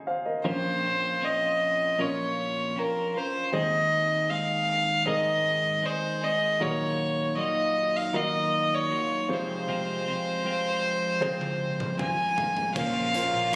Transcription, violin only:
0.46 1.26 C5 medium
1.24 2.03 D#5 medium
2.01 2.80 C#5 medium
2.79 3.19 A#4 medium
3.17 3.54 C5 medium
3.56 4.32 D#5 medium
4.31 5.07 F5 medium
5.09 5.87 D#5 medium
5.86 6.25 C5 medium
6.24 6.64 D#5 medium
6.62 7.38 C#5 medium
7.38 7.98 D#5 medium
7.96 8.18 F5 medium
8.16 8.76 D#5 medium
8.75 9.34 C#5 medium
9.33 12.00 C5 medium
12.01 12.73 G#5 medium
12.76 13.55 F5 medium

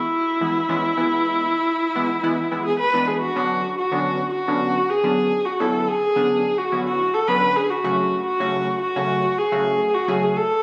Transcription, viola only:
0.00 2.62 E4 loud
2.65 2.79 G#4 loud
2.79 3.09 B4 loud
3.08 3.21 G#4 loud
3.22 3.74 F#4 loud
3.78 4.30 F#4 loud
4.34 4.91 F#4 loud
4.90 5.47 G#4 loud
5.46 5.61 F#4 loud
5.60 5.89 A4 medium
5.88 6.59 G#4 loud
6.58 6.85 F#4 loud
6.86 7.15 F#4 medium
7.14 7.30 A4 loud
7.28 7.58 B4 loud
7.56 7.71 G#4 loud
7.70 8.26 F#4 loud
8.26 8.78 F#4 loud
8.82 9.40 F#4 loud
9.38 9.96 G#4 loud
9.94 10.10 F#4 loud
10.09 10.38 G#4 medium
10.36 10.63 A4 loud

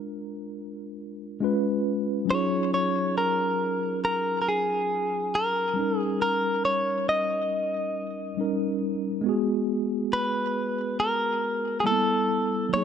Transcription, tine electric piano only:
0.00 1.36 G#3 medium
0.00 1.38 D4 medium
0.00 1.39 F4 medium
0.00 1.40 A#4 medium
1.40 2.28 G#3 medium
1.40 2.26 C#4 medium
1.40 2.29 F4 medium
1.40 2.30 B4 medium
2.25 5.71 F#3 medium
2.25 5.72 C#4 medium
2.25 5.73 D#4 medium
2.31 5.74 F4 medium
2.31 5.75 G#4 medium
5.74 8.32 G3 medium
5.74 8.33 C#4 medium
5.79 8.34 D#4 medium
5.79 8.36 A#4 medium
8.37 9.24 G3 medium
8.37 9.25 C#4 medium
8.37 9.26 D#4 medium
8.37 9.26 A#4 medium
9.21 11.80 G#3 medium
9.21 11.81 B3 medium
9.26 11.82 F#4 medium
9.26 11.84 G#4 medium
11.84 12.72 G3 medium
11.84 11.93 A#3 medium
11.84 12.73 E4 medium
11.84 12.73 A4 medium
11.92 12.75 B3 medium
12.69 12.84 F#3 medium
12.69 12.84 A#3 medium
12.74 12.84 D#4 medium
12.74 12.84 G#4 medium

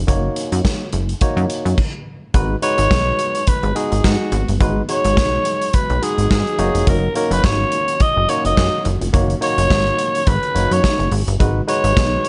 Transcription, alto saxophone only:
2.63 3.50 C#5 loud
3.48 3.78 B4 loud
3.76 4.06 G#4 medium
4.05 4.49 F#4 medium
4.90 5.76 C#5 loud
5.75 6.05 B4 loud
6.03 6.31 G#4 medium
6.32 6.90 G#4 medium
6.88 7.16 A#4 loud
7.17 7.34 A#4 medium
7.32 7.46 B4 loud
7.45 8.03 C#5 loud
8.02 8.31 D#5 loud
8.30 8.45 C#5 loud
8.46 8.83 D#5 loud
9.43 10.30 C#5 loud
10.28 10.74 B4 loud
10.73 11.13 C#5 loud
11.69 12.29 C#5 loud

